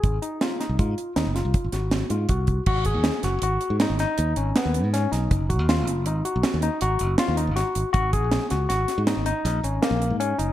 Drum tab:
CC |--------------|x-------------|--------------|--------------|
HH |xxxxxxxxxxxxxx|-xxxxxxxxxxxxx|xxxxxxxxxxxxxx|xxxxxxxxxxxxxx|
SD |--oo--oo-oo---|--oo--oo--o-oo|--o---o---o-o-|--ooooo-o-o---|
BD |o---o---o---oo|oo------------|oo------------|oo------------|